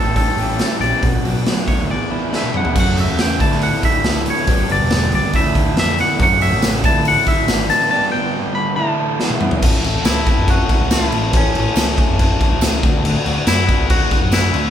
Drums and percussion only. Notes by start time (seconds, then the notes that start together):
0.16 kick, open hi-hat
0.38 open hi-hat
0.59 snare, open hi-hat
0.81 open hi-hat
1.03 kick, open hi-hat
1.25 open hi-hat
1.46 snare, open hi-hat
1.68 kick, open hi-hat
2.33 snare
2.44 high tom
2.54 mid tom
2.65 floor tom
2.75 kick, crash
2.97 open hi-hat
3.19 snare, open hi-hat
3.40 kick, open hi-hat
3.51 snare
3.62 open hi-hat
3.83 kick, open hi-hat
4.04 snare, open hi-hat
4.26 open hi-hat
4.47 kick, open hi-hat
4.69 open hi-hat
4.90 snare, open hi-hat
5.12 open hi-hat
5.33 kick, open hi-hat
5.55 kick, open hi-hat
5.77 snare, open hi-hat
5.98 snare, open hi-hat
6.20 kick, open hi-hat, tambourine
6.41 open hi-hat, tambourine
6.62 snare, open hi-hat, tambourine
6.84 kick, open hi-hat, tambourine
7.05 open hi-hat, tambourine
7.26 kick, open hi-hat
7.48 snare, open hi-hat, tambourine
7.70 snare, open hi-hat, tambourine
9.20 snare
9.30 high tom
9.41 mid tom
9.51 floor tom
9.62 kick, crash
9.84 crash
10.05 snare, tambourine, crash
10.27 kick, crash
10.48 kick, crash
10.69 kick, crash
10.91 snare, tambourine, crash
11.12 crash
11.33 kick, crash
11.55 crash
11.76 snare, tambourine, crash
11.98 kick, crash
12.19 kick, crash
12.41 kick, crash
12.61 snare, tambourine, crash
12.83 kick, crash
13.05 crash
13.26 crash
13.47 snare, tambourine, crash
13.69 kick, crash
13.90 kick, crash
14.11 kick, crash
14.32 snare, tambourine, crash
14.54 crash